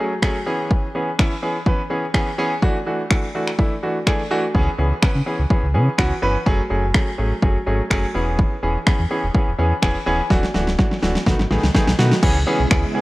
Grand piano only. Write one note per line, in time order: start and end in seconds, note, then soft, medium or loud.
0.00 0.12 F#3 medium
0.00 0.12 A3 medium
0.00 0.12 C#4 medium
0.00 0.12 G#4 medium
0.22 0.36 F#3 loud
0.22 0.36 A3 medium
0.22 0.36 C#4 medium
0.22 0.36 G#4 loud
0.46 0.85 E3 medium
0.46 0.85 B3 medium
0.46 0.86 C#4 medium
0.46 0.86 G#4 loud
0.94 1.08 E3 medium
0.94 1.08 B3 medium
0.94 1.08 C#4 medium
0.94 1.08 G#4 medium
1.18 1.32 E3 medium
1.18 1.32 B3 medium
1.18 1.32 C#4 medium
1.18 1.32 E4 medium
1.42 1.56 E3 medium
1.42 1.56 B3 medium
1.42 1.56 C#4 medium
1.42 1.56 G#4 medium
1.66 1.80 E3 medium
1.66 1.80 B3 medium
1.66 1.80 C#4 medium
1.66 1.80 B4 medium
1.90 2.04 E3 medium
1.90 2.04 B3 medium
1.90 2.04 C#4 medium
1.90 2.04 G#4 medium
2.14 2.28 E3 loud
2.14 2.28 B3 medium
2.14 2.28 C#4 loud
2.14 2.28 G#4 loud
2.38 2.52 E3 loud
2.38 2.52 B3 loud
2.38 2.52 C#4 loud
2.38 2.52 G#4 loud
2.62 2.76 E3 loud
2.62 2.76 A3 medium
2.62 2.76 D4 loud
2.62 2.76 F#4 loud
2.86 3.00 E3 medium
2.86 3.00 A3 medium
2.86 3.00 D4 medium
2.86 3.00 F#4 medium
3.10 3.24 E3 medium
3.10 3.24 A3 medium
3.10 3.24 D4 medium
3.10 3.24 F#4 medium
3.35 3.48 E3 medium
3.35 3.48 A3 medium
3.35 3.48 D4 medium
3.35 3.48 F#4 medium
3.58 3.72 E3 medium
3.58 3.72 A3 medium
3.58 3.72 D4 medium
3.58 3.72 E4 medium
3.82 3.96 E3 medium
3.82 3.96 A3 medium
3.82 3.96 D4 medium
3.82 3.96 F#4 medium
4.06 4.20 E3 loud
4.06 4.20 A3 loud
4.06 4.20 D4 loud
4.06 4.20 G#4 loud
4.30 4.44 E3 loud
4.30 4.44 A3 loud
4.30 4.44 D4 medium
4.30 4.44 F#4 loud
4.54 4.68 E3 loud
4.54 4.68 B3 loud
4.54 4.68 C#4 loud
4.54 4.68 G#4 loud
4.78 4.92 E3 medium
4.78 4.92 B3 medium
4.78 4.92 C#4 medium
4.78 4.92 G#4 medium
5.02 5.16 E3 medium
5.02 5.16 B3 medium
5.02 5.16 C#4 medium
5.02 5.16 B4 medium
5.26 5.40 E3 medium
5.26 5.40 B3 medium
5.26 5.40 C#4 medium
5.26 5.40 G#4 medium
5.50 5.64 E3 medium
5.50 5.64 B3 medium
5.50 5.64 C#4 medium
5.50 5.64 G#4 medium
5.74 5.88 E3 medium
5.74 5.88 B3 medium
5.74 5.88 C#4 medium
5.74 5.88 G#4 medium
5.98 6.12 E3 loud
5.98 6.12 B3 loud
5.98 6.12 C#4 medium
5.98 6.12 F#4 loud
6.22 6.36 E3 loud
6.22 6.36 B3 medium
6.22 6.36 C#4 medium
6.22 6.36 B4 loud
6.46 6.60 F#3 loud
6.46 6.60 A3 loud
6.46 6.60 C#4 loud
6.46 6.60 G#4 loud
6.70 6.84 F#3 medium
6.70 6.84 A3 medium
6.70 6.84 C#4 medium
6.70 6.84 G#4 medium
6.94 7.08 F#3 medium
6.94 7.08 A3 medium
6.94 7.08 C#4 medium
6.94 7.08 G#4 medium
7.18 7.32 F#3 medium
7.18 7.32 A3 medium
7.18 7.32 C#4 medium
7.18 7.32 G#4 medium
7.42 7.56 F#3 medium
7.42 7.56 A3 medium
7.42 7.56 C#4 medium
7.42 7.56 G#4 medium
7.66 7.80 F#3 medium
7.66 7.80 A3 medium
7.66 7.80 C#4 medium
7.66 7.80 G#4 medium
7.90 8.04 F#3 loud
7.90 8.04 A3 loud
7.90 8.04 C#4 loud
7.90 8.04 G#4 loud
8.14 8.53 E3 medium
8.14 8.54 B3 medium
8.14 8.54 C#4 medium
8.14 8.54 G#4 medium
8.63 8.76 E3 medium
8.63 8.76 B3 medium
8.63 8.76 C#4 medium
8.63 8.77 G#4 medium
8.87 9.00 E3 medium
8.87 9.00 B3 medium
8.87 9.00 C#4 medium
8.87 9.01 G#4 medium
9.11 9.24 E3 medium
9.11 9.24 B3 medium
9.11 9.24 C#4 medium
9.11 9.24 G#4 medium
9.35 9.48 E3 medium
9.35 9.48 B3 medium
9.35 9.48 C#4 medium
9.35 9.48 G#4 medium
9.58 9.72 E3 medium
9.58 9.72 B3 medium
9.58 9.72 C#4 medium
9.58 9.72 G#4 medium
9.82 9.96 E3 loud
9.82 9.96 B3 medium
9.82 9.96 C#4 medium
9.82 9.96 G#4 loud
10.06 10.20 E3 loud
10.06 10.20 B3 loud
10.06 10.20 C#4 loud
10.06 10.20 G#4 loud
10.30 10.44 E3 loud
10.30 10.44 A3 loud
10.30 10.44 D4 loud
10.30 10.44 F#4 loud
10.54 10.68 E3 medium
10.54 10.68 A3 medium
10.54 10.68 D4 medium
10.54 10.68 F#4 medium
10.78 10.92 E3 medium
10.78 10.92 A3 medium
10.78 10.92 D4 medium
10.78 10.92 F#4 medium
11.02 11.16 E3 medium
11.02 11.16 A3 medium
11.02 11.16 D4 medium
11.02 11.16 F#4 medium
11.26 11.40 D#3 medium
11.26 11.40 A3 medium
11.26 11.40 B3 medium
11.26 11.40 F#4 medium
11.50 11.64 D#3 medium
11.50 11.64 A3 medium
11.50 11.64 B3 medium
11.50 11.64 G#4 medium
11.74 11.88 D#3 loud
11.74 11.88 A3 loud
11.74 11.88 B3 medium
11.74 11.88 G#4 loud
11.98 12.12 D#3 loud
11.98 12.12 A3 medium
11.98 12.12 B3 loud
11.98 12.12 F#4 loud
12.22 12.36 E3 loud
12.22 12.36 B3 loud
12.22 12.36 C#4 loud
12.22 12.36 G#4 loud
12.46 12.60 E3 loud
12.46 12.60 B3 loud
12.46 12.60 C#4 medium
12.46 12.60 G#4 loud
12.70 12.84 E3 medium
12.70 12.84 B3 medium
12.70 12.84 C#4 medium
12.70 12.84 G#4 medium
12.94 13.01 E3 medium
12.94 13.01 B3 medium
12.94 13.01 C#4 medium
12.94 13.01 G#4 medium